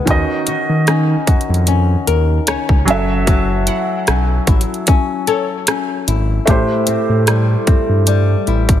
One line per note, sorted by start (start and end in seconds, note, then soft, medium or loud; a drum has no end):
0.00 0.16 G#3 medium
0.00 0.16 B3 medium
0.00 0.16 E4 medium
0.05 0.25 D#2 loud
0.05 2.82 D#3 medium
0.05 2.96 D#3 medium
0.05 2.83 C#4 medium
0.05 2.84 F#4 medium
0.05 kick loud
0.05 closed hi-hat medium
0.11 2.85 D#5 medium
0.47 0.56 D#3 soft
0.47 1.27 F#4 medium
0.47 closed hi-hat medium
0.69 1.16 D#3 medium
0.87 1.67 C#4 medium
0.87 cross-stick loud
0.87 closed hi-hat medium
1.27 1.36 F2 soft
1.27 3.67 F#4 medium
1.27 kick medium
1.27 closed hi-hat medium
1.41 closed hi-hat soft
1.49 1.96 F2 loud
1.54 closed hi-hat soft
1.67 2.47 C#4 medium
1.67 closed hi-hat medium
2.07 2.40 D#2 medium
2.07 2.96 A#4 medium
2.07 closed hi-hat medium
2.47 2.56 C#2 medium
2.47 4.07 C#4 medium
2.47 3.23 C#5 medium
2.47 cross-stick loud
2.47 closed hi-hat medium
2.69 2.89 C#2 medium
2.69 kick medium
2.85 3.69 F#1 loud
2.85 6.02 F#3 medium
2.85 3.26 F#3 medium
2.85 6.03 C#4 medium
2.85 6.04 A4 medium
2.85 closed hi-hat medium
2.90 6.05 E5 medium
3.27 6.47 F#3 medium
3.27 kick loud
3.27 closed hi-hat medium
3.67 4.47 E4 medium
3.67 5.72 F#5 medium
3.67 closed hi-hat medium
4.07 4.40 B1 medium
4.07 4.86 C#4 medium
4.07 cross-stick loud
4.07 closed hi-hat medium
4.47 4.65 A1 loud
4.47 6.07 E4 medium
4.47 kick medium
4.47 closed hi-hat medium
4.61 closed hi-hat soft
4.74 closed hi-hat soft
4.87 5.67 C#4 medium
4.87 kick loud
4.87 closed hi-hat medium
5.27 7.31 A4 medium
5.27 6.83 C#5 medium
5.27 closed hi-hat medium
5.67 6.56 C#4 medium
5.67 cross-stick loud
5.67 closed hi-hat medium
6.08 6.40 G#1 medium
6.08 8.47 E4 medium
6.08 closed hi-hat medium
6.46 6.65 A1 loud
6.46 8.80 A2 medium
6.46 8.80 A3 medium
6.46 8.80 E4 medium
6.46 8.80 G4 medium
6.46 kick loud
6.46 closed hi-hat medium
6.51 8.80 C5 medium
6.87 6.96 A2 soft
6.87 7.66 C4 medium
6.87 closed hi-hat medium
7.09 7.56 A2 medium
7.27 8.06 G3 medium
7.27 cross-stick loud
7.27 closed hi-hat medium
7.67 7.76 G2 medium
7.67 8.80 C4 medium
7.67 kick medium
7.67 closed hi-hat medium
7.89 8.36 G2 medium
8.07 8.80 G3 medium
8.07 closed hi-hat medium
8.47 8.80 A1 medium
8.47 8.80 E4 medium
8.47 closed hi-hat soft
8.69 kick medium
8.69 closed hi-hat medium